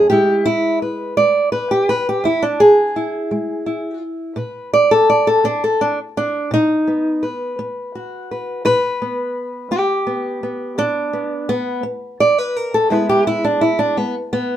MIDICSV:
0, 0, Header, 1, 2, 480
1, 0, Start_track
1, 0, Key_signature, 4, "major"
1, 0, Tempo, 710900
1, 67, Time_signature, 12, 3, 24, 8
1, 9836, End_track
2, 0, Start_track
2, 0, Title_t, "Steel-string acoustic guitar"
2, 0, Program_c, 0, 25
2, 0, Note_on_c, 0, 42, 64
2, 65, Note_on_c, 0, 67, 96
2, 68, Note_off_c, 0, 42, 0
2, 71, Note_on_c, 0, 40, 73
2, 76, Note_on_c, 0, 56, 50
2, 84, Note_on_c, 0, 64, 53
2, 299, Note_off_c, 0, 64, 0
2, 307, Note_off_c, 0, 67, 0
2, 307, Note_on_c, 0, 64, 113
2, 502, Note_off_c, 0, 40, 0
2, 548, Note_off_c, 0, 64, 0
2, 555, Note_on_c, 0, 71, 48
2, 782, Note_off_c, 0, 56, 0
2, 788, Note_off_c, 0, 71, 0
2, 789, Note_on_c, 0, 56, 61
2, 791, Note_on_c, 0, 74, 104
2, 1024, Note_off_c, 0, 74, 0
2, 1027, Note_on_c, 0, 71, 86
2, 1148, Note_off_c, 0, 71, 0
2, 1155, Note_on_c, 0, 67, 100
2, 1222, Note_off_c, 0, 56, 0
2, 1272, Note_off_c, 0, 67, 0
2, 1277, Note_on_c, 0, 71, 92
2, 1394, Note_off_c, 0, 71, 0
2, 1410, Note_on_c, 0, 67, 84
2, 1511, Note_on_c, 0, 40, 72
2, 1520, Note_off_c, 0, 67, 0
2, 1520, Note_on_c, 0, 64, 96
2, 1635, Note_off_c, 0, 64, 0
2, 1637, Note_on_c, 0, 62, 96
2, 1754, Note_off_c, 0, 62, 0
2, 1756, Note_on_c, 0, 68, 105
2, 1943, Note_off_c, 0, 40, 0
2, 1999, Note_on_c, 0, 64, 48
2, 2236, Note_on_c, 0, 56, 58
2, 2465, Note_off_c, 0, 64, 0
2, 2474, Note_on_c, 0, 64, 47
2, 2667, Note_off_c, 0, 56, 0
2, 2715, Note_off_c, 0, 68, 0
2, 2925, Note_off_c, 0, 64, 0
2, 2943, Note_on_c, 0, 47, 73
2, 2949, Note_on_c, 0, 71, 48
2, 3194, Note_off_c, 0, 71, 0
2, 3197, Note_on_c, 0, 74, 110
2, 3315, Note_off_c, 0, 74, 0
2, 3317, Note_on_c, 0, 69, 94
2, 3381, Note_off_c, 0, 47, 0
2, 3435, Note_off_c, 0, 69, 0
2, 3440, Note_on_c, 0, 74, 92
2, 3557, Note_off_c, 0, 74, 0
2, 3560, Note_on_c, 0, 69, 93
2, 3673, Note_on_c, 0, 59, 57
2, 3677, Note_off_c, 0, 69, 0
2, 3678, Note_on_c, 0, 62, 97
2, 3795, Note_off_c, 0, 62, 0
2, 3807, Note_on_c, 0, 69, 88
2, 3920, Note_off_c, 0, 69, 0
2, 3924, Note_on_c, 0, 62, 96
2, 4039, Note_off_c, 0, 62, 0
2, 4106, Note_off_c, 0, 59, 0
2, 4168, Note_on_c, 0, 62, 97
2, 4395, Note_on_c, 0, 47, 81
2, 4401, Note_off_c, 0, 62, 0
2, 4413, Note_on_c, 0, 63, 99
2, 4642, Note_on_c, 0, 59, 43
2, 4827, Note_off_c, 0, 47, 0
2, 4880, Note_on_c, 0, 71, 50
2, 4884, Note_off_c, 0, 63, 0
2, 5121, Note_off_c, 0, 59, 0
2, 5124, Note_on_c, 0, 59, 64
2, 5370, Note_on_c, 0, 66, 46
2, 5551, Note_off_c, 0, 59, 0
2, 5611, Note_off_c, 0, 71, 0
2, 5614, Note_on_c, 0, 71, 45
2, 5813, Note_off_c, 0, 66, 0
2, 5839, Note_on_c, 0, 47, 77
2, 5841, Note_off_c, 0, 71, 0
2, 5843, Note_on_c, 0, 71, 117
2, 6088, Note_on_c, 0, 59, 47
2, 6269, Note_off_c, 0, 47, 0
2, 6554, Note_off_c, 0, 59, 0
2, 6557, Note_off_c, 0, 71, 0
2, 6557, Note_on_c, 0, 59, 57
2, 6560, Note_on_c, 0, 67, 92
2, 6789, Note_off_c, 0, 59, 0
2, 6797, Note_on_c, 0, 59, 47
2, 7040, Note_off_c, 0, 59, 0
2, 7043, Note_on_c, 0, 59, 46
2, 7275, Note_off_c, 0, 67, 0
2, 7277, Note_on_c, 0, 47, 73
2, 7282, Note_on_c, 0, 62, 112
2, 7514, Note_off_c, 0, 59, 0
2, 7517, Note_on_c, 0, 59, 47
2, 7706, Note_off_c, 0, 47, 0
2, 7756, Note_off_c, 0, 62, 0
2, 7758, Note_off_c, 0, 59, 0
2, 7758, Note_on_c, 0, 59, 100
2, 7981, Note_off_c, 0, 59, 0
2, 7989, Note_on_c, 0, 59, 66
2, 8240, Note_on_c, 0, 74, 106
2, 8362, Note_off_c, 0, 74, 0
2, 8362, Note_on_c, 0, 71, 93
2, 8420, Note_off_c, 0, 59, 0
2, 8484, Note_off_c, 0, 71, 0
2, 8484, Note_on_c, 0, 70, 98
2, 8596, Note_off_c, 0, 70, 0
2, 8604, Note_on_c, 0, 69, 98
2, 8711, Note_on_c, 0, 40, 70
2, 8714, Note_on_c, 0, 56, 54
2, 8716, Note_off_c, 0, 69, 0
2, 8718, Note_on_c, 0, 59, 50
2, 8722, Note_on_c, 0, 64, 54
2, 8723, Note_on_c, 0, 71, 92
2, 8835, Note_off_c, 0, 71, 0
2, 8841, Note_on_c, 0, 67, 94
2, 8953, Note_off_c, 0, 64, 0
2, 8954, Note_off_c, 0, 67, 0
2, 8961, Note_on_c, 0, 64, 100
2, 9074, Note_off_c, 0, 64, 0
2, 9078, Note_on_c, 0, 62, 93
2, 9141, Note_off_c, 0, 40, 0
2, 9192, Note_off_c, 0, 62, 0
2, 9192, Note_on_c, 0, 64, 87
2, 9309, Note_off_c, 0, 64, 0
2, 9310, Note_on_c, 0, 62, 97
2, 9425, Note_off_c, 0, 56, 0
2, 9433, Note_on_c, 0, 56, 57
2, 9434, Note_off_c, 0, 59, 0
2, 9434, Note_off_c, 0, 62, 0
2, 9434, Note_on_c, 0, 59, 98
2, 9549, Note_off_c, 0, 59, 0
2, 9674, Note_on_c, 0, 59, 98
2, 9836, Note_off_c, 0, 56, 0
2, 9836, Note_off_c, 0, 59, 0
2, 9836, End_track
0, 0, End_of_file